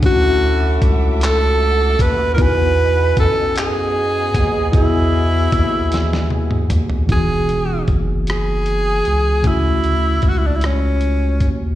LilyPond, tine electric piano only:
\new Staff \with { instrumentName = "Tine electric piano" } { \time 6/8 \key e \major \tempo 4. = 51 <a cis' d' e' fis'>2. | <b dis' e' fis' gis''>2. | <b e' fis' gis' dis''>2. | <e b dis' fis' gis'>2. |
<cis a cis' e' fis'>2. | }